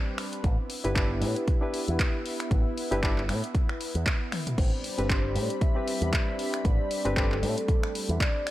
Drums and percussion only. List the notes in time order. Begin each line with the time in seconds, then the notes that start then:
0.18 finger snap, open hi-hat
0.33 closed hi-hat
0.44 kick, closed hi-hat
0.70 open hi-hat
0.85 closed hi-hat
0.96 kick, clap, closed hi-hat
1.22 open hi-hat
1.36 closed hi-hat
1.48 kick, closed hi-hat
1.74 open hi-hat
1.88 closed hi-hat
1.99 kick, clap, closed hi-hat
2.26 open hi-hat
2.40 finger snap, closed hi-hat
2.51 kick, closed hi-hat
2.78 open hi-hat
2.92 closed hi-hat
3.03 kick, clap, closed hi-hat
3.18 clap
3.29 finger snap, open hi-hat
3.44 closed hi-hat
3.55 kick, closed hi-hat
3.69 finger snap
3.81 open hi-hat
3.95 closed hi-hat
4.06 kick, clap, closed hi-hat
4.32 finger snap, open hi-hat, high tom
4.47 closed hi-hat, mid tom
4.58 kick, closed hi-hat, crash
4.84 open hi-hat
4.98 closed hi-hat
5.10 kick, clap, closed hi-hat
5.36 open hi-hat
5.50 closed hi-hat
5.61 kick, closed hi-hat
5.88 open hi-hat
6.02 closed hi-hat
6.13 kick, clap, closed hi-hat
6.39 open hi-hat
6.54 finger snap, closed hi-hat
6.65 kick, closed hi-hat
6.91 open hi-hat
7.05 closed hi-hat
7.17 kick, clap, closed hi-hat
7.32 clap
7.43 open hi-hat
7.58 closed hi-hat
7.68 kick, closed hi-hat
7.83 finger snap
7.95 open hi-hat
8.09 closed hi-hat
8.20 kick, clap, closed hi-hat
8.47 finger snap, open hi-hat